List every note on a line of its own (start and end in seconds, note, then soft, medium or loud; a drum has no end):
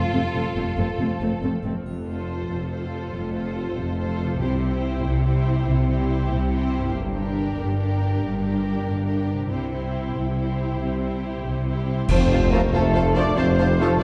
0.00 1.68 F3 medium
0.00 0.34 C4 soft
0.00 0.14 F4 soft
0.00 1.17 F4 medium
0.00 1.22 A4 soft
0.00 1.50 A4 medium
0.00 1.00 C5 soft
0.14 0.22 F1 soft
0.14 0.22 F2 soft
0.14 0.22 A3 soft
0.14 0.22 C4 soft
0.14 0.56 F4 soft
0.35 0.43 F1 soft
0.35 0.44 F2 soft
0.35 0.43 A3 soft
0.35 0.43 C4 soft
0.35 0.77 C4 soft
0.56 0.65 F1 soft
0.56 0.66 F2 medium
0.56 0.64 A3 soft
0.56 0.64 C4 soft
0.56 1.43 F4 soft
0.78 0.87 F1 soft
0.78 0.87 F2 soft
0.78 0.86 A3 soft
0.78 0.86 C4 soft
0.78 1.63 C4 soft
1.00 1.08 F1 soft
1.00 1.09 F2 soft
1.00 1.08 A3 soft
1.00 1.09 C4 soft
1.00 4.43 C5 soft
1.21 1.30 F1 soft
1.21 1.29 F2 soft
1.21 1.30 A3 soft
1.21 1.31 C4 soft
1.21 1.81 A4 soft
1.42 1.50 F1 soft
1.42 1.51 F2 soft
1.42 1.51 A3 soft
1.42 1.52 C4 soft
1.42 1.76 F4 soft
1.64 1.72 F1 soft
1.64 1.72 F2 soft
1.64 1.73 A3 soft
1.64 1.72 C4 soft
1.64 1.74 C4 soft
1.69 4.34 F3 soft
1.73 4.27 C4 soft
1.78 4.38 F4 soft
1.82 2.42 F1 soft
1.82 4.41 A4 soft
1.86 2.43 F2 soft
1.86 triangle soft
2.07 2.70 F4 soft
2.07 2.70 A4 soft
2.07 2.70 C5 soft
2.48 3.05 F1 soft
2.48 3.06 F2 soft
2.71 3.33 F4 soft
2.71 3.32 A4 soft
2.71 3.34 C5 soft
3.13 3.69 F1 soft
3.13 3.70 F2 soft
3.33 3.97 F4 soft
3.33 3.96 A4 soft
3.33 3.97 C5 soft
3.76 4.33 F1 soft
3.76 4.33 F2 soft
3.97 4.40 F4 soft
3.97 4.39 A4 soft
3.97 4.40 C5 soft
4.23 6.87 C3 soft
4.28 6.89 C4 soft
4.33 6.92 E4 soft
4.37 4.96 C2 medium
4.37 5.00 C3 soft
4.37 4.97 C3 soft
4.37 6.89 G4 soft
4.37 4.59 G4 soft
4.42 4.61 E4 soft
4.42 4.62 C5 soft
4.60 5.24 E4 soft
4.60 5.23 G4 soft
4.60 5.25 C5 soft
5.04 5.60 C2 medium
5.04 5.60 C3 medium
5.25 5.88 E4 soft
5.25 5.87 G4 soft
5.25 5.88 C5 soft
5.67 6.23 C2 medium
5.67 6.23 C3 medium
5.89 6.51 E4 soft
5.89 6.49 G4 soft
5.89 6.51 C5 soft
6.31 6.87 C2 medium
6.31 6.87 C3 medium
6.50 6.94 E4 soft
6.50 6.92 G4 soft
6.50 6.94 C5 soft
6.77 9.43 G2 medium
6.81 9.45 A#3 soft
6.86 9.47 D4 soft
6.90 7.50 G1 medium
6.90 9.44 G4 soft
6.94 7.50 G2 medium
7.13 7.76 D4 soft
7.13 7.76 G4 soft
7.13 7.77 A#4 soft
7.57 8.14 G1 medium
7.57 8.14 G2 soft
7.78 8.41 D4 soft
7.78 8.40 G4 soft
7.78 8.42 A#4 soft
8.21 8.78 G1 soft
8.21 8.78 G2 medium
8.41 9.05 D4 soft
8.41 9.05 G4 soft
8.41 9.06 A#4 soft
8.85 9.42 G1 soft
8.85 9.43 G2 soft
9.06 9.49 D4 soft
9.06 9.47 G4 soft
9.06 9.49 A#4 soft
9.32 12.03 C3 soft
9.37 13.27 C4 soft
9.41 12.07 E4 soft
9.45 10.07 C2 soft
9.45 9.69 E4 soft
9.45 12.09 G4 soft
9.45 9.69 G4 soft
9.50 10.08 C3 soft
9.50 9.70 C5 soft
9.70 10.35 E4 soft
9.70 10.35 G4 soft
9.70 10.34 C5 soft
10.14 10.72 C2 soft
10.14 10.72 C3 soft
10.35 11.00 E4 soft
10.35 11.00 G4 soft
10.35 10.99 C5 soft
10.79 11.37 C2 soft
10.79 11.37 C3 soft
11.01 11.65 E4 soft
11.01 11.65 G4 soft
11.01 11.65 C5 soft
11.45 12.02 C2 soft
11.45 12.02 C3 soft
11.66 12.09 E4 soft
11.66 12.09 G4 soft
11.66 12.08 C5 soft
12.08 12.66 F1 medium
12.08 12.66 F2 medium
12.08 14.03 F3 medium
12.08 12.49 C4 loud
12.08 12.17 F4 medium
12.08 12.48 C5 medium
12.08 12.17 C5 medium
12.08 12.49 C5 medium
12.08 12.18 F5 medium
12.08 12.18 A5 medium
12.08 12.48 C6 medium
12.08 concert bass drum medium
12.08 crash medium
12.30 12.39 F4 medium
12.30 13.16 A4 medium
12.30 12.40 C5 medium
12.30 12.40 F5 medium
12.30 12.40 A5 medium
12.41 13.04 C5 medium
12.51 12.59 F3 medium
12.51 12.60 A3 medium
12.51 12.74 A#3 medium
12.51 12.60 F4 medium
12.51 12.59 A#4 medium
12.51 12.62 A#4 medium
12.51 12.60 C5 medium
12.51 12.94 F5 medium
12.51 12.62 F5 medium
12.51 12.62 A5 medium
12.51 12.59 A#5 medium
12.63 12.83 A5 medium
12.72 13.30 F1 medium
12.72 13.31 F2 medium
12.72 13.15 A3 medium
12.72 12.82 F4 medium
12.72 13.15 A4 medium
12.72 13.18 A4 medium
12.72 12.82 C5 medium
12.72 12.83 F5 medium
12.72 12.82 A5 medium
12.72 13.19 A5 medium
12.72 14.01 C6 medium
12.84 13.91 A5 medium
12.94 13.02 F4 medium
12.94 13.02 C5 medium
12.94 13.03 F5 medium
12.94 13.79 F5 medium
12.94 13.03 A5 medium
13.05 13.69 C5 medium
13.15 13.23 F3 medium
13.15 13.24 A3 medium
13.15 13.38 D4 medium
13.15 13.24 F4 medium
13.15 13.58 A4 medium
13.15 13.24 C5 medium
13.15 13.37 D5 medium
13.15 13.39 D5 medium
13.15 13.24 F5 medium
13.15 13.23 A5 medium
13.15 13.37 D6 medium
13.28 13.48 F4 soft
13.37 13.94 F1 medium
13.37 13.94 F2 medium
13.37 14.03 C4 medium
13.37 13.80 C4 medium
13.37 13.45 F4 medium
13.37 13.79 C5 medium
13.37 13.80 C5 medium
13.37 13.45 C5 medium
13.37 13.46 F5 medium
13.37 13.46 A5 medium
13.37 13.79 C6 medium
13.49 14.03 F4 medium
13.58 13.67 F4 medium
13.58 14.03 A4 medium
13.58 13.67 C5 medium
13.58 13.67 F5 medium
13.58 13.66 A5 medium
13.70 14.03 C5 medium
13.80 13.88 F3 medium
13.80 13.90 A3 medium
13.80 13.88 A3 medium
13.80 13.88 F4 medium
13.80 14.02 A4 medium
13.80 13.90 A4 medium
13.80 13.88 C5 medium
13.80 14.03 F5 medium
13.80 13.89 F5 medium
13.80 14.00 A5 medium
13.80 13.90 A5 medium
13.93 14.03 A5 medium
14.00 14.03 F4 medium
14.00 14.03 C5 medium